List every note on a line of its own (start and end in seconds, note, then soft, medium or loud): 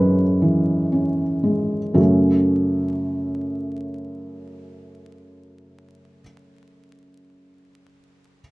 0.00 1.94 F#2 soft
0.00 0.42 E3 soft
0.00 0.22 G#3 soft
0.00 0.92 C#4 soft
0.00 1.96 B4 medium
0.00 2.00 C#5 medium
0.00 2.00 D#5 medium
0.42 1.23 E3 soft
0.92 1.76 C#4 soft
1.43 1.97 G#3 soft
1.94 6.21 F#2 soft
1.94 6.21 C#3 soft
1.94 6.22 A3 soft
1.94 6.21 C#4 soft
1.94 6.22 F#4 soft
1.94 6.21 A4 soft